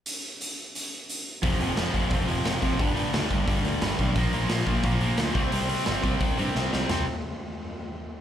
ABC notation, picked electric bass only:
X:1
M:4/4
L:1/8
Q:1/4=176
K:Flyd
V:1 name="Picked electric bass" clef=bass
z8 | F,,, F,,, F,,, F,,, F,,, F,,, F,,, F,,, | G,,,2 D,, G,,, G,,, D,, G,,, B,,, | _B,,, B,,, B,,, B,,, B,,, B,,, D,, C,, |
C,,2 G,,, C,, C,, G,, C,, C,, | C,, z6 z |]